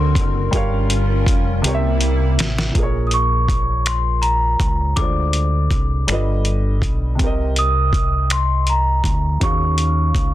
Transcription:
Already playing: D2 D3 C4 D4 F#4 A#4 C5 F#5 C6
0.15 F#1, kick, closed hi-hat
0.51 G1 G3 C#4 F4 G4 A#4, kick, closed hi-hat
0.55 C#5 F5
0.90 closed hi-hat
1.26 F1, kick, closed hi-hat
1.62 C2 C3 G3 A#3 C4 E4 G4, closed hi-hat
1.66 A#4 C#5
1.75 E5
2.01 closed hi-hat
2.38 A1, snare, closed hi-hat
2.59 snare
2.71 A#1 A#2 A#3, kick, closed hi-hat
2.77 G#4 A#4
2.83 C#5
3.07 D#6
3.11 C#6, closed hi-hat
3.48 kick, closed hi-hat
3.86 C6, finger snap, closed hi-hat
4.22 A#5, closed hi-hat
4.60 C#2, kick, closed hi-hat
4.96 D2 D3 G#3 F4 D6, kick, closed hi-hat
5.00 C5 D5
5.33 closed hi-hat
5.71 C2, kick, closed hi-hat
6.07 G1 D3 G3 F4, finger snap, closed hi-hat
6.12 B4 D#5
6.45 closed hi-hat
6.82 B1, kick, closed hi-hat
7.15 C3 C4
7.19 C2 G4, kick, closed hi-hat
7.24 A#4 D#5
7.56 D#6, closed hi-hat
7.93 kick, closed hi-hat
8.30 C6, finger snap, closed hi-hat
8.67 A#5, closed hi-hat
9.04 D2, kick, closed hi-hat
9.40 D#2 D#3 C#4 F#4 G#4 C#6, kick, closed hi-hat
9.46 F5
9.78 closed hi-hat
10.15 C#2, kick, closed hi-hat

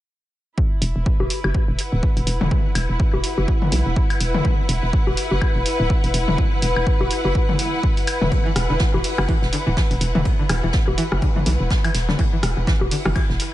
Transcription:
0.58 E4, kick
0.82 E1, open hi-hat
0.96 E1
1.01 B4
1.06 kick
1.20 E1, low bongo
1.30 open hi-hat
1.44 F#1, low bongo, high woodblock
1.54 kick
1.68 E1
1.77 F#5, open hi-hat
1.92 D1
2.03 kick
2.17 E1, open hi-hat
2.27 E1, open hi-hat
2.41 E1, mid tom
2.51 kick
2.75 E1, open hi-hat, high woodblock
2.89 E1
3.00 kick
3.14 E1, low bongo
3.24 open hi-hat
3.38 F#1, low bongo
3.48 kick
3.62 mid tom
3.72 B1, open hi-hat
3.86 E1
3.96 kick
4.10 open hi-hat, high woodblock
4.21 E1, open hi-hat
4.34 mid tom
4.45 kick
4.69 E1, open hi-hat
4.83 E1
4.93 kick
5.07 E1, low bongo
5.17 open hi-hat
5.31 F#1, low bongo
5.41 kick, high woodblock
5.55 E1
5.66 open hi-hat
5.80 D1
5.90 kick
6.04 E1, open hi-hat
6.14 E1, open hi-hat
6.28 E1, mid tom
6.38 kick
6.62 E1, open hi-hat
6.76 E1, high woodblock
6.87 kick
7.00 E1, low bongo
7.11 open hi-hat
7.25 F#1, low bongo
7.35 kick
7.49 mid tom
7.59 open hi-hat
7.83 kick
7.97 open hi-hat
8.07 open hi-hat, high woodblock
8.22 E1, mid tom
8.32 kick, ride
8.46 E3
8.56 E1, cross-stick, open hi-hat, ride
8.70 E1 D3
8.79 E3, kick, snare, ride
8.94 E1 E3, low bongo
9.04 open hi-hat
9.18 F#1, cross-stick, ride, low bongo, high woodblock
9.29 E3, kick, ride
9.42 E1, snare
9.52 D3, open hi-hat, ride
9.67 D1 E3
9.77 E3, kick, snare, ride
9.91 E1, open hi-hat
10.01 E1, open hi-hat, ride
10.15 E1 E3, mid tom
10.25 kick, ride
10.39 D3
10.49 E1 E3, cross-stick, open hi-hat, ride, high woodblock
10.64 E1 E3
10.73 kick, snare, ride
10.88 E1, low bongo
10.98 E3, open hi-hat, ride
11.12 F#1, cross-stick, low bongo
11.22 D3, kick, ride
11.36 E3, mid tom, ride
11.46 B1 E3, open hi-hat, ride
11.60 E1
11.70 kick, snare, ride
11.84 E3, open hi-hat, high woodblock
11.94 E1, snare, open hi-hat, ride
12.09 D3, snare, mid tom
12.19 E3, kick, ride
12.33 E3
12.43 E1, cross-stick, open hi-hat, ride
12.57 E1
12.67 E3, kick, snare, ride
12.81 E1, low bongo
12.91 D3, open hi-hat
13.05 F#1 E3, cross-stick, ride, low bongo
13.16 E3, kick, ride, high woodblock
13.30 E1, snare
13.40 open hi-hat, ride

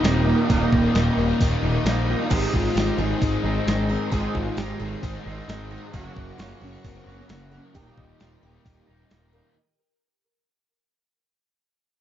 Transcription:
Already playing: D#2 A#2 D#3 A#4 D#5 G5 D#6
0.04 D#1 D#3 G3 A#3 C4 D#4, snare, open hi-hat
0.27 D#3 G3 A#3 D#4
0.49 D#1 D#2 A#2 D#3 G3 A#3 D#4, kick, open hi-hat
0.73 D#1, kick
0.95 D#1 D#3 G3 A#3 D#4, snare, open hi-hat
1.17 D#1 D#3 G3 A#3 D#4
1.40 D#1 D#2 A#2 D#3, kick, open hi-hat
1.63 D#1 D#3 G3 A#3 D#4
1.85 A#1 D#3 G3 A#3 D#4, snare, open hi-hat
2.09 D#3 G3 A#3 D#4 F4
2.30 G#1 G#2 D#3 G#3 C4 D#4 G4 G#4 C5 G#5, kick, crash
2.54 G#1 F4, kick
2.75 G#1 D#3 G#3 C4 D#4 G4, snare, open hi-hat
2.98 G#1 G#3 C4 D#4 G#4
3.21 G#1 G#2 D#3 G#3, kick, open hi-hat
3.44 G#1 G#3 C4 D#4
3.67 G#1 D#3 G#3 C4 D4 D#4, snare, open hi-hat
3.89 G#3 C4 D#4 A#4
4.11 G#1 G#2 D#3 G#3 C4 D#4 F4 G#4, kick, open hi-hat
4.35 G#1, kick
4.57 G#1 D#3 G#3 C4 D#4 G4, snare, open hi-hat
4.80 G#1 G#3 C4 D#4 G#4
5.03 G#1 G#2 D#3 G#3, kick, open hi-hat
5.25 G#1 G#3 C4 D#4
5.48 G#1 D#3 G#3 C4 D#4, snare, open hi-hat
5.71 G#3 C4 D#4 A#4
5.93 F#1 F#2 C#3 F#3 A#3 C#4 F#4 A#4 C#5 F#5 C#6, kick, open hi-hat
6.16 F#1, kick
6.38 F#1 F#3 A#3 C#4 F4 F#4, snare, open hi-hat
6.61 F#1 F#3 A#3 C#4 F#4
6.85 F#1 F#2 C#3 F#3 C4, kick, open hi-hat
7.07 F#1 F#3 A#3 C#4 F#4
7.11 A#3
7.29 F#1 F#3 A#3 C#4 F#4, snare, open hi-hat
7.51 A#3 C#4 F#4 A#4
7.55 F#3 C#4
7.74 D#1 D#2 A#2 D#3 G3 A#3 D#4 G4 A#4 D#5 G5 D#6, kick, open hi-hat
7.80 D#4
7.98 D#1, kick
8.20 D#1 D#3 G3 A#3 D#4 F4, snare, open hi-hat
8.43 D#1 D#3 G3 A#3 D#4 G4
8.65 D#1 D#2 A#2 D#3, kick, open hi-hat
8.88 D#1 D#3 G3 A#3 D#4
9.11 D#1 D#3 G3 A#3 D#4, snare, open hi-hat
9.33 D#3 G3 A#3 D#4 A#4

